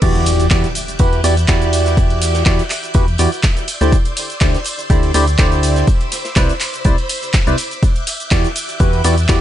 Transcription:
0.02 fm bass E2, synth stab E3 E4 F#4 G4 D5, string machine E5 D6 F#6 G6, kick, closed hi-hat, crash, tambourine, impact, shaker
0.15 closed hi-hat, tambourine
0.26 closed hi-hat, open hi-hat, tambourine, shaker
0.40 closed hi-hat, tambourine, shaker
0.50 fm bass E2, synth stab E3 E4 F#4 G4 D5, kick, snare, clap, closed hi-hat, tambourine, shaker
0.63 snare, closed hi-hat, tambourine, shaker
0.75 closed hi-hat, open hi-hat, tambourine, shaker
0.88 closed hi-hat, tambourine, shaker
0.99 fm bass E2, synth stab E3 E4 F#4 G4 B4, kick, closed hi-hat, tambourine, shaker
1.12 closed hi-hat, tambourine
1.24 fm bass E2, synth stab E3 E4 F#4 G4 D5, closed hi-hat, open hi-hat, tambourine, shaker
1.37 closed hi-hat, tambourine, shaker
1.48 fm bass E2, synth stab E3 E4 F#4 G4 D5, kick, snare, clap, closed hi-hat, tambourine, shaker
1.62 closed hi-hat, tambourine, shaker
1.73 closed hi-hat, open hi-hat, tambourine, shaker
1.86 snare, closed hi-hat, tambourine, shaker
1.97 kick, closed hi-hat, tambourine, shaker
2.10 closed hi-hat, tambourine
2.22 snare, closed hi-hat, open hi-hat, tambourine, shaker
2.34 snare, closed hi-hat, tambourine, shaker
2.46 fm bass E2, synth stab E3 E4 F#4 G4 D5, kick, snare, clap, closed hi-hat, tambourine, shaker
2.59 closed hi-hat, tambourine, shaker
2.70 clap, closed hi-hat, open hi-hat, tambourine, shaker
2.83 closed hi-hat, tambourine, shaker
2.94 fm bass E2, synth stab E3 E4 F#4 G4 B4, kick, closed hi-hat, tambourine, shaker
3.08 closed hi-hat, tambourine
3.18 fm bass E2, synth stab E3 E4 F#4 G4 D5, closed hi-hat, open hi-hat, tambourine, shaker
3.32 closed hi-hat, tambourine, shaker
3.43 kick, snare, clap, closed hi-hat, tambourine, shaker
3.56 closed hi-hat, tambourine, shaker
3.68 string machine D5 C6 E6, closed hi-hat, open hi-hat, tambourine, shaker
3.81 fm bass D2, synth stab D3 E4 G4 C5 D5, closed hi-hat, tambourine, shaker
3.92 kick, closed hi-hat, tambourine, shaker
4.05 closed hi-hat, tambourine
4.17 closed hi-hat, open hi-hat, tambourine, shaker
4.30 closed hi-hat, tambourine, shaker
4.41 fm bass D2, synth stab D3 E4 G4 C5 D5, kick, snare, clap, closed hi-hat, tambourine, shaker
4.54 snare, closed hi-hat, tambourine, shaker
4.64 closed hi-hat, open hi-hat, tambourine, shaker
4.79 closed hi-hat, tambourine, shaker
4.90 fm bass D2, synth stab D3 E4 G4 C5 D5, kick, closed hi-hat, tambourine, shaker
5.03 closed hi-hat, tambourine
5.14 fm bass D2, synth stab D3 E4 G4 C5 D5, closed hi-hat, open hi-hat, tambourine, shaker
5.27 closed hi-hat, tambourine, shaker
5.38 fm bass D2, synth stab D3 E4 G4 C5 D5, kick, snare, clap, closed hi-hat, tambourine, shaker
5.52 closed hi-hat, tambourine, shaker
5.63 closed hi-hat, open hi-hat, tambourine, shaker
5.76 snare, closed hi-hat, tambourine, shaker
5.87 string machine C5 B5 D6, kick, closed hi-hat, tambourine, shaker
6.01 closed hi-hat, tambourine
6.12 snare, closed hi-hat, open hi-hat, tambourine, shaker
6.25 snare, closed hi-hat, tambourine, shaker
6.36 fm bass C2, synth stab C3 E4 B4 C5 D5, kick, snare, clap, closed hi-hat, tambourine, shaker
6.49 closed hi-hat, tambourine, shaker
6.60 clap, closed hi-hat, open hi-hat, tambourine, shaker
6.73 closed hi-hat, tambourine, shaker
6.85 fm bass C2, synth stab C3 E4 B4 C5 D5, kick, closed hi-hat, tambourine, shaker
6.98 closed hi-hat, tambourine
7.09 closed hi-hat, open hi-hat, tambourine, shaker
7.23 closed hi-hat, tambourine, shaker
7.33 kick, snare, clap, closed hi-hat, tambourine, shaker
7.47 fm bass C2, synth stab C3 E4 B4 C5 D5, closed hi-hat, tambourine, shaker
7.58 closed hi-hat, open hi-hat, tambourine, shaker
7.71 closed hi-hat, tambourine, shaker
7.82 string machine E5 F#6 G6, kick, closed hi-hat, tambourine, shaker
7.96 closed hi-hat, tambourine
8.07 closed hi-hat, open hi-hat, tambourine, shaker
8.20 closed hi-hat, tambourine, shaker
8.30 fm bass E2, synth stab E3 E4 F#4 G4 D5, kick, snare, clap, closed hi-hat, tambourine, shaker
8.44 snare, closed hi-hat, tambourine, shaker
8.56 closed hi-hat, open hi-hat, tambourine, shaker
8.69 closed hi-hat, tambourine, shaker
8.79 fm bass E2, synth stab E3 E4 F#4 G4 B4, kick, closed hi-hat, tambourine, shaker
8.93 closed hi-hat, tambourine
9.04 fm bass E2, synth stab E3 E4 F#4 G4 D5, closed hi-hat, open hi-hat, tambourine, shaker
9.18 closed hi-hat, tambourine, shaker
9.29 fm bass E2, synth stab E3 E4 F#4 G4 D5, kick, snare, clap, closed hi-hat, tambourine, shaker

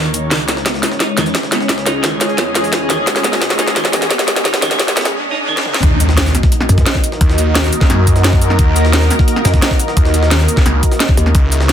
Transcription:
Already playing: detuned saw bass D#2, analog synth pad A#3 D#4 F#4 D#5, ambient pad D#4 A#4 C#5
0.14 closed hi-hat, shaker
0.31 detuned saw bass C#2, clean electric guitar D#3, analog synth pad G#3 C#4 C#5, ambient pad C#4, kick, snare, closed hi-hat, riser
0.39 ambient pad G#4
0.48 snare, closed hi-hat, shaker
0.57 snare
0.66 clean electric guitar B3, kick, snare, closed hi-hat
0.70 ambient pad D#5
0.74 snare
0.83 snare, closed hi-hat, shaker
0.92 snare
1.00 clean electric guitar D#4, kick, snare, closed hi-hat
1.17 detuned saw bass E2, clean electric guitar D#3, snare, closed hi-hat, shaker
1.26 snare, shaker
1.35 kick, snare, closed hi-hat
1.43 snare
1.52 clean electric guitar B3, snare, closed hi-hat, shaker
1.61 snare
1.69 detuned saw bass C#2, kick, snare, closed hi-hat
1.78 snare
1.86 clean electric guitar D#4, snare, closed hi-hat, shaker
2.04 clean electric guitar D#3, kick, snare, closed hi-hat
2.21 snare, closed hi-hat, shaker
2.29 closed hi-hat
2.38 detuned saw bass E2, clean electric guitar B3, kick, snare, closed hi-hat
2.55 snare, closed hi-hat, shaker
2.64 snare, shaker
2.73 clean electric guitar D#4, kick, snare, closed hi-hat
2.90 clean electric guitar D#3, snare, closed hi-hat, shaker
3.07 detuned saw bass C#2, kick, snare, closed hi-hat
3.16 snare
3.24 clean electric guitar B3, snare, closed hi-hat, shaker
3.33 snare
3.42 kick, snare, closed hi-hat
3.50 snare
3.59 clean electric guitar D#4, snare, closed hi-hat, shaker
3.67 snare
3.76 clean electric guitar D#3, kick, snare, closed hi-hat
3.85 snare
3.93 detuned saw bass E2, snare, closed hi-hat, shaker
4.02 snare, shaker
4.11 clean electric guitar B3, kick, snare, closed hi-hat
4.19 snare
4.28 snare, closed hi-hat, shaker
4.36 snare
4.45 detuned saw bass C#2, clean electric guitar D#4, kick, snare, closed hi-hat
4.54 snare, closed hi-hat
4.62 clean electric guitar D#3, snare, closed hi-hat, shaker
4.71 snare, closed hi-hat
4.79 kick, snare, closed hi-hat
4.88 snare, shaker
4.97 detuned saw bass C#2, clean electric guitar B3, snare, closed hi-hat, shaker
5.01 snare, closed hi-hat
5.05 snare, closed hi-hat
5.31 clean electric guitar D#4
5.48 clean electric guitar D#3
5.57 snare
5.66 mid tom
5.74 snare
5.83 detuned saw bass D#2, analog synth pad A#3 D#4 F#4 D#5, kick, closed hi-hat, impact
6.00 ambient pad A#4, closed hi-hat, shaker
6.09 snare
6.17 snare, closed hi-hat
6.26 snare, shaker
6.35 snare, closed hi-hat, shaker
6.43 kick, snare
6.52 closed hi-hat
6.61 snare
6.69 wobble bass F#2, closed hi-hat, shaker
6.78 kick, snare, shaker
6.86 snare, closed hi-hat
6.95 kick, snare
7.04 closed hi-hat, shaker
7.12 snare
7.21 detuned saw bass D#2, kick, closed hi-hat
7.30 snare
7.38 closed hi-hat, shaker
7.55 snare, closed hi-hat
7.64 shaker
7.73 closed hi-hat, shaker
7.81 kick, snare, closed hi-hat
7.90 detuned saw bass F#2, snare, closed hi-hat
8.07 kick, closed hi-hat, shaker
8.16 snare, shaker
8.24 snare, closed hi-hat
8.33 kick
8.42 closed hi-hat, shaker
8.50 snare
8.59 detuned saw bass D#2, kick, closed hi-hat
8.76 closed hi-hat, shaker
8.85 snare
8.93 snare, closed hi-hat
9.02 snare, shaker
9.11 snare, closed hi-hat, shaker
9.19 kick, snare
9.28 closed hi-hat
9.36 snare
9.45 wobble bass F#2, snare, closed hi-hat, shaker
9.54 kick, snare, shaker
9.62 snare, closed hi-hat
9.71 kick, snare
9.80 closed hi-hat, shaker
9.88 snare
9.97 detuned saw bass D#2, kick, closed hi-hat
10.05 snare
10.14 closed hi-hat, shaker
10.23 snare
10.31 snare, closed hi-hat
10.40 snare, shaker
10.48 closed hi-hat, shaker
10.57 kick, snare
10.66 detuned saw bass C#2, snare, closed hi-hat
10.83 kick, closed hi-hat, shaker
10.92 snare, shaker
11.00 snare, closed hi-hat
11.09 kick
11.17 wobble bass D#2, closed hi-hat, shaker
11.26 snare
11.35 detuned saw bass C#2, analog synth pad C#4 E4 G#4 E5, kick, closed hi-hat
11.52 closed hi-hat, shaker
11.61 snare
11.69 snare, closed hi-hat

